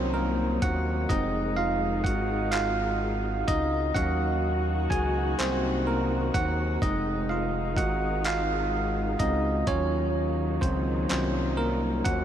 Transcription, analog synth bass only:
Already playing: C2
0.63 D#2
1.11 F1
2.06 G#1
3.49 C#2
3.97 D#2
4.91 C#2
5.40 C2
6.35 D#2
6.83 F1
7.78 G#1
9.21 C#2
9.68 D#2
10.62 C#2
11.12 C2
12.07 D#2

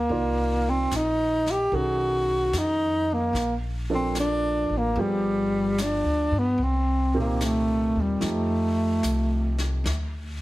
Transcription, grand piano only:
Already playing: A#2 A4
0.10 D#3 A#3 F4 D5
1.73 D#3 C#4 G#4 A4
3.90 F3 A#3 D4 A4
4.97 F3 B3 G4 G#4
7.14 A#2 D#3 C4 G4
8.20 F3 A3 D#4 G4

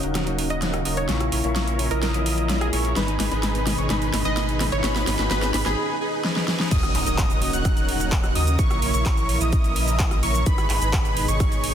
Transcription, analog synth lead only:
0.03 F#6
0.85 D#6
1.09 C#6
1.32 C#6
1.44 C#6
1.91 D#6
2.73 C#6
2.96 B5
3.20 B5
3.32 B5
3.78 C#6
3.90 B5
4.14 B5
4.25 B5
4.72 C#6
4.84 B5
5.07 B5
5.19 B5
5.31 B5
5.54 B5
5.66 B5
6.71 D#6
6.95 D#6
7.07 D#6
7.53 F#6
8.35 D#6
8.59 C#6
8.82 C#6
8.94 C#6
9.41 D#6
10.23 C#6
10.46 B5
10.70 B5
10.81 B5
11.28 C#6

